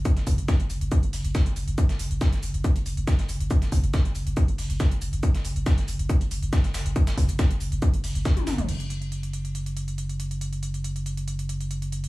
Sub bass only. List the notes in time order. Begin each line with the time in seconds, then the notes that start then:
0.27 F#1
0.38 F#1
0.70 F#1
0.81 F#1
1.13 F#1
1.25 F#1
1.56 F#1
1.68 F#1
2.00 F#1
2.11 F#1
2.43 F#1
2.54 F#1
2.86 F#1
2.97 F#1
3.29 F#1
3.40 F#1
3.72 F#1
3.84 F#1
4.15 F#1
4.27 F#1
4.58 F#1
4.70 F#1
5.02 F#1
5.13 F#1
5.45 F#1
5.56 F#1
5.88 F#1
5.99 F#1
6.31 F#1
6.42 F#1
6.74 F#1
6.86 F#1
7.18 F#1
7.29 F#1
7.61 F#1
7.72 F#1
8.04 F#1
8.15 F#1
8.47 F#1
8.58 F#1
8.68 F#1